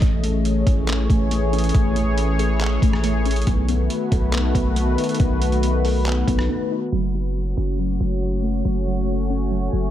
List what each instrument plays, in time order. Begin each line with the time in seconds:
Already playing: analog synth pad A3 C#4
0.02 808-style bass A1, analog synth pad E3 G#4 C#5, synth pluck A3, kick, closed hi-hat
0.23 synth pluck A3, closed hi-hat
0.45 closed hi-hat
0.67 808-style bass A1, synth pluck G#4, kick, closed hi-hat
0.88 synth pluck A3, clap, closed hi-hat
1.10 808-style bass A1, synth pluck A3, kick, closed hi-hat
1.31 synth pluck A3, closed hi-hat
1.53 synth pluck C#4, closed hi-hat
1.58 closed hi-hat
1.64 closed hi-hat
1.69 closed hi-hat
1.75 808-style bass A1, synth pluck A3, kick, closed hi-hat
1.96 synth pluck A3, closed hi-hat
2.18 closed hi-hat
2.39 synth pluck G#4, closed hi-hat
2.61 synth pluck A3, clap, closed hi-hat
2.82 808-style bass A1, synth pluck A3, kick, closed hi-hat
2.93 cross-stick
3.04 synth pluck A3, closed hi-hat
3.25 synth pluck C#4, closed hi-hat
3.31 closed hi-hat
3.36 closed hi-hat
3.42 closed hi-hat
3.47 808-style bass B1, analog synth pad D#3 A3 B3 F#4 B4, synth pluck B3, kick, closed hi-hat
3.69 synth pluck B3, closed hi-hat
3.90 closed hi-hat
4.12 808-style bass B1, synth pluck A4, kick, closed hi-hat
4.33 synth pluck B3, clap, closed hi-hat
4.55 808-style bass B1, synth pluck B3, kick, closed hi-hat
4.76 synth pluck B3, closed hi-hat
4.98 synth pluck D#4, closed hi-hat
5.04 closed hi-hat
5.09 closed hi-hat
5.14 closed hi-hat
5.20 808-style bass B1, synth pluck B3, kick, closed hi-hat
5.41 synth pluck B3, closed hi-hat
5.52 closed hi-hat
5.63 closed hi-hat
5.85 synth pluck A4, open hi-hat
6.06 synth pluck B3, clap, closed hi-hat
6.28 808-style bass B1, synth pluck B3, kick, closed hi-hat
6.39 cross-stick
6.49 synth pluck B3
6.71 synth pluck D#4
6.92 808-style bass F#1, synth pluck F#3, analog synth pad A3 C#4 F#4 C#5
7.14 synth pluck F#3
7.57 808-style bass F#1, synth pluck C#4
7.79 synth pluck F#3
8.00 808-style bass F#1, synth pluck F#3
8.22 synth pluck F#3
8.43 synth pluck A3
8.65 808-style bass F#1, synth pluck F#3
8.87 synth pluck F#3
9.30 synth pluck C#4
9.51 synth pluck F#3
9.73 808-style bass F#1, synth pluck F#3